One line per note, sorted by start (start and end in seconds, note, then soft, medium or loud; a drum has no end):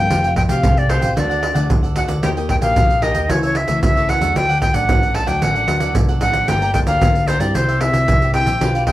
0.00 0.36 G5 loud
0.10 0.44 F1 medium
0.10 0.61 F3 medium
0.10 0.35 A3 medium
0.10 0.36 C4 soft
0.10 0.36 G4 medium
0.10 0.23 A4 soft
0.10 0.23 C5 soft
0.10 0.23 F5 soft
0.10 0.23 G5 medium
0.10 pandeiro medium
0.10 shaker medium
0.10 surdo medium
0.24 0.36 C5 soft
0.24 0.36 F5 medium
0.24 0.36 G5 medium
0.24 pandeiro soft
0.24 shaker soft
0.36 0.43 G5 medium
0.36 muted cavaquinho stroke soft
0.36 pandeiro medium
0.36 surdo medium
0.49 0.61 C2 medium
0.49 0.85 A3 medium
0.49 0.86 C4 medium
0.49 0.86 G4 medium
0.49 0.63 C5 soft
0.49 0.80 F5 medium
0.49 0.63 F5 medium
0.49 0.62 G5 medium
0.49 pandeiro medium
0.49 shaker medium
0.63 0.97 C2 medium
0.63 1.14 C3 soft
0.63 0.88 A4 soft
0.63 0.89 C5 soft
0.63 0.89 F5 soft
0.63 0.90 G5 medium
0.63 pandeiro medium
0.63 shaker medium
0.63 surdo loud
0.77 0.91 D5 medium
0.77 pandeiro soft
0.77 shaker soft
0.89 1.12 A3 soft
0.89 1.13 C4 medium
0.89 1.13 G4 medium
0.89 1.02 A4 medium
0.89 1.17 C5 medium
0.89 1.02 C5 medium
0.89 1.01 F5 medium
0.89 1.00 G5 medium
0.89 pandeiro medium
0.89 shaker medium
1.01 1.14 A1 medium
1.01 1.16 C5 medium
1.01 1.15 F5 medium
1.01 1.15 G5 medium
1.01 pandeiro medium
1.01 shaker medium
1.16 1.51 D2 medium
1.16 1.67 D3 soft
1.16 1.53 A3 medium
1.16 1.29 D4 soft
1.16 1.53 D4 soft
1.16 1.53 F#4 medium
1.16 1.29 A4 soft
1.16 1.29 D5 medium
1.16 1.66 D5 medium
1.16 1.28 F#5 medium
1.16 pandeiro medium
1.16 shaker medium
1.16 surdo medium
1.29 1.41 A4 soft
1.29 1.42 D5 medium
1.29 1.42 F#5 medium
1.29 pandeiro soft
1.29 shaker soft
1.42 muted cavaquinho stroke soft
1.42 pandeiro medium
1.54 1.67 D2 medium
1.54 1.92 A3 medium
1.54 1.92 D4 medium
1.54 1.92 F#4 medium
1.54 1.82 A4 soft
1.54 1.82 D5 medium
1.54 1.81 F#5 medium
1.54 pandeiro medium
1.54 shaker medium
1.70 2.04 D2 medium
1.70 2.21 A2 medium
1.70 pandeiro medium
1.70 shaker medium
1.70 surdo loud
1.83 1.95 A4 soft
1.83 1.96 D5 medium
1.83 1.95 F#5 medium
1.83 pandeiro soft
1.83 shaker soft
1.95 2.12 A3 medium
1.95 2.08 D4 soft
1.95 2.12 D4 soft
1.95 2.12 F#4 medium
1.95 2.09 A4 soft
1.95 2.08 D5 medium
1.95 2.03 F#5 medium
1.95 2.06 F#5 medium
1.95 pandeiro medium
1.95 shaker medium
2.08 2.21 D2 medium
2.08 2.22 A4 medium
2.08 2.22 D5 medium
2.08 2.21 F#5 medium
2.08 pandeiro medium
2.08 shaker medium
2.22 2.57 D#2 medium
2.22 2.74 D#3 medium
2.22 2.31 A#3 soft
2.22 2.31 D#4 medium
2.22 2.35 G4 soft
2.22 2.32 G4 medium
2.22 2.35 A#4 soft
2.22 2.36 D#5 medium
2.22 2.29 G5 medium
2.22 2.36 G5 soft
2.22 pandeiro medium
2.22 shaker medium
2.22 surdo medium
2.37 2.59 A#3 medium
2.37 2.59 D#4 medium
2.37 2.60 G4 medium
2.37 2.48 A#4 soft
2.37 2.49 D#5 medium
2.37 2.49 G5 medium
2.37 pandeiro soft
2.37 shaker soft
2.49 2.56 G5 medium
2.49 muted cavaquinho stroke soft
2.49 pandeiro medium
2.49 surdo medium
2.61 2.73 A#1 medium
2.61 2.98 A#3 medium
2.61 2.98 D#4 medium
2.61 2.98 G4 medium
2.61 2.75 A#4 soft
2.61 2.75 D#5 medium
2.61 3.04 F5 medium
2.61 2.74 G5 medium
2.61 pandeiro medium
2.61 shaker medium
2.76 3.10 A#1 medium
2.76 3.01 G4 soft
2.76 3.02 A#4 soft
2.76 3.02 D#5 medium
2.76 3.03 G5 soft
2.76 pandeiro medium
2.76 shaker medium
2.76 surdo loud
2.90 pandeiro soft
2.90 shaker soft
3.02 3.25 A#3 medium
3.02 3.25 D#4 medium
3.02 3.15 G4 medium
3.02 3.25 G4 medium
3.02 3.15 A#4 medium
3.02 3.32 D#5 medium
3.02 3.15 D#5 medium
3.02 3.13 G5 medium
3.02 pandeiro medium
3.14 3.26 D#2 medium
3.14 3.29 A#4 medium
3.14 3.28 D#5 medium
3.14 3.28 G5 medium
3.14 pandeiro medium
3.14 shaker medium
3.29 3.63 C#2 loud
3.29 3.80 C#3 soft
3.29 3.55 E3 soft
3.29 3.55 A3 medium
3.29 3.42 E4 soft
3.29 3.55 E4 medium
3.29 3.42 A4 soft
3.29 3.42 C#5 medium
3.29 3.43 C#5 medium
3.29 3.41 E5 medium
3.29 pandeiro medium
3.29 shaker medium
3.29 surdo medium
3.43 3.55 A4 soft
3.43 3.55 C#5 medium
3.43 3.58 C#5 medium
3.43 3.55 E5 medium
3.43 pandeiro soft
3.43 shaker soft
3.55 3.83 E5 medium
3.55 muted cavaquinho stroke soft
3.55 pandeiro medium
3.67 3.80 C#2 medium
3.67 3.91 E3 medium
3.67 3.91 A3 medium
3.67 3.91 E4 medium
3.67 3.95 A4 soft
3.67 3.94 C#5 medium
3.67 3.94 E5 medium
3.67 pandeiro medium
3.67 shaker medium
3.83 4.16 C#2 medium
3.83 4.33 C#3 medium
3.83 4.11 E5 medium
3.83 pandeiro medium
3.83 shaker medium
3.83 surdo loud
3.96 4.19 E3 medium
3.96 4.19 A3 medium
3.96 4.19 E4 medium
3.96 4.08 A4 medium
3.96 4.09 C#5 medium
3.96 4.08 E5 medium
3.96 pandeiro soft
3.96 shaker soft
4.08 4.21 E4 soft
4.08 4.21 A4 soft
4.08 4.21 C#5 soft
4.08 4.20 E5 medium
4.08 4.38 F#5 medium
4.08 pandeiro medium
4.08 shaker medium
4.21 4.33 E2 medium
4.21 4.44 F#3 medium
4.21 4.44 A3 medium
4.21 4.45 D4 medium
4.21 4.35 A4 soft
4.21 4.35 C#5 medium
4.21 4.34 E5 medium
4.21 pandeiro medium
4.21 shaker medium
4.35 4.70 D2 medium
4.35 4.86 D3 medium
4.35 4.48 D4 soft
4.35 4.48 A4 soft
4.35 4.49 D5 soft
4.35 4.48 F#5 soft
4.35 4.61 G5 loud
4.35 pandeiro medium
4.35 shaker medium
4.35 surdo soft
4.49 4.60 A4 medium
4.49 4.61 D5 medium
4.49 4.61 F#5 medium
4.49 pandeiro soft
4.49 shaker soft
4.61 4.76 G5 medium
4.61 muted cavaquinho stroke soft
4.61 pandeiro medium
4.61 shaker medium
4.61 surdo medium
4.73 4.86 A1 medium
4.73 5.24 F#3 medium
4.73 5.24 A3 medium
4.73 5.24 D4 medium
4.73 4.88 A4 medium
4.73 4.87 D5 medium
4.73 4.87 F#5 medium
4.73 5.17 F#5 medium
4.73 pandeiro medium
4.73 shaker medium
4.88 5.23 A1 medium
4.88 5.39 A2 medium
4.88 5.13 D4 soft
4.88 5.14 A4 soft
4.88 5.14 D5 medium
4.88 5.15 F#5 soft
4.88 pandeiro medium
4.88 shaker medium
4.88 surdo loud
5.03 pandeiro soft
5.03 shaker soft
5.14 5.27 D4 medium
5.14 5.27 A4 medium
5.14 5.26 D5 medium
5.14 5.25 F#5 medium
5.14 5.29 A5 medium
5.14 pandeiro medium
5.26 5.39 D2 medium
5.26 5.64 F#3 medium
5.26 5.64 A3 medium
5.26 5.64 D4 medium
5.26 5.41 A4 medium
5.26 5.40 D5 medium
5.26 5.40 F#5 medium
5.26 5.44 G5 medium
5.26 pandeiro medium
5.26 shaker medium
5.41 5.65 A1 loud
5.41 5.93 D3 soft
5.41 5.54 D4 soft
5.41 5.54 A4 soft
5.41 5.55 D5 soft
5.41 5.95 F#5 medium
5.41 5.54 F#5 soft
5.41 pandeiro medium
5.41 shaker medium
5.41 surdo medium
5.55 5.67 A4 medium
5.55 5.67 D5 medium
5.55 5.67 F#5 medium
5.55 pandeiro soft
5.55 shaker soft
5.68 5.92 D2 medium
5.68 6.17 F#3 medium
5.68 6.17 A3 medium
5.68 6.18 D4 medium
5.68 muted cavaquinho stroke soft
5.68 pandeiro medium
5.68 shaker medium
5.80 6.08 A4 medium
5.80 6.07 D5 medium
5.80 6.07 F#5 medium
5.80 pandeiro medium
5.80 shaker medium
5.95 6.19 C2 medium
5.95 6.46 A2 medium
5.95 pandeiro medium
5.95 shaker medium
5.95 surdo loud
6.09 6.20 A4 medium
6.09 6.21 D5 medium
6.09 6.21 F#5 medium
6.09 pandeiro soft
6.09 shaker soft
6.21 6.46 A1 medium
6.21 6.37 F#3 soft
6.21 6.37 A3 medium
6.21 6.34 D4 soft
6.21 6.37 D4 medium
6.21 6.34 A4 soft
6.21 6.34 D5 soft
6.21 6.50 F#5 medium
6.21 6.32 F#5 medium
6.21 pandeiro medium
6.21 shaker medium
6.33 6.47 A4 soft
6.33 6.47 D5 medium
6.33 6.47 F#5 medium
6.33 pandeiro medium
6.33 shaker medium
6.48 6.82 G1 medium
6.48 6.99 G3 soft
6.48 6.71 A#3 medium
6.48 6.71 D4 soft
6.48 6.60 A4 soft
6.48 6.71 A4 medium
6.48 6.61 D5 soft
6.48 6.73 G5 loud
6.48 6.61 G5 soft
6.48 6.61 A#5 soft
6.48 pandeiro medium
6.48 shaker medium
6.48 surdo medium
6.62 6.74 D5 medium
6.62 6.74 G5 medium
6.62 6.74 A#5 medium
6.62 pandeiro soft
6.62 shaker soft
6.74 6.84 A#3 medium
6.74 6.84 D4 medium
6.74 6.84 A4 medium
6.74 6.80 G5 medium
6.74 muted cavaquinho stroke soft
6.74 pandeiro medium
6.74 shaker medium
6.74 surdo medium
6.87 6.99 D2 medium
6.87 7.36 A#3 medium
6.87 7.37 D4 medium
6.87 7.37 A4 medium
6.87 7.01 D5 soft
6.87 7.29 F5 medium
6.87 7.00 G5 medium
6.87 7.00 A#5 medium
6.87 pandeiro medium
6.87 shaker medium
7.01 7.35 D2 medium
7.01 7.52 D3 medium
7.01 7.26 A4 soft
7.01 7.27 D5 soft
7.01 7.28 G5 soft
7.01 7.28 A#5 medium
7.01 pandeiro medium
7.01 shaker medium
7.01 surdo loud
7.15 pandeiro soft
7.15 shaker soft
7.27 7.40 A4 medium
7.27 7.42 C5 medium
7.27 7.41 D5 medium
7.27 7.40 G5 medium
7.27 7.39 A#5 medium
7.27 pandeiro medium
7.27 shaker medium
7.40 7.52 G2 medium
7.40 7.76 G3 medium
7.40 7.76 C4 medium
7.40 7.77 E4 medium
7.40 7.56 D5 medium
7.40 7.54 D5 soft
7.40 7.53 G5 medium
7.40 7.53 A#5 medium
7.40 pandeiro medium
7.40 shaker medium
7.54 7.89 C2 loud
7.54 8.05 C3 medium
7.54 7.67 E4 soft
7.54 7.67 G4 soft
7.54 7.82 C5 medium
7.54 7.68 C5 soft
7.54 7.67 E5 medium
7.54 pandeiro medium
7.54 shaker medium
7.54 surdo medium
7.68 7.80 G4 medium
7.68 7.80 C5 medium
7.68 7.80 E5 medium
7.68 pandeiro soft
7.68 shaker soft
7.81 8.30 G3 medium
7.81 8.30 C4 medium
7.81 8.30 E4 medium
7.81 8.33 E5 loud
7.81 muted cavaquinho stroke soft
7.81 pandeiro medium
7.81 shaker medium
7.93 8.05 C2 medium
7.93 8.20 G4 soft
7.93 8.20 C5 medium
7.93 8.19 E5 medium
7.93 pandeiro medium
7.93 shaker medium
8.08 8.42 C2 medium
8.08 8.58 G2 medium
8.08 pandeiro medium
8.08 shaker medium
8.08 surdo loud
8.21 8.34 G4 medium
8.21 8.34 C5 medium
8.21 8.34 E5 medium
8.21 pandeiro soft
8.21 shaker soft
8.34 8.50 G3 medium
8.34 8.50 C4 medium
8.34 8.46 E4 soft
8.34 8.50 E4 medium
8.34 8.47 G4 soft
8.34 8.47 C5 soft
8.34 8.45 E5 medium
8.34 8.84 G5 loud
8.34 pandeiro medium
8.46 8.58 A#1 medium
8.46 8.61 G4 medium
8.46 8.60 C5 medium
8.46 8.59 E5 medium
8.46 pandeiro medium
8.46 shaker medium
8.61 8.92 B1 medium
8.61 8.92 B2 medium
8.61 8.92 G3 soft
8.61 8.92 D4 soft
8.61 8.74 D4 soft
8.61 8.92 F4 medium
8.61 8.74 G4 soft
8.61 8.74 B4 soft
8.61 8.74 F5 medium
8.61 pandeiro medium
8.61 shaker medium
8.61 surdo medium
8.75 8.87 G4 soft
8.75 8.87 B4 medium
8.75 8.87 F5 medium
8.75 pandeiro soft
8.75 shaker soft
8.87 8.92 G5 medium
8.87 muted cavaquinho stroke soft
8.87 pandeiro medium
8.87 surdo medium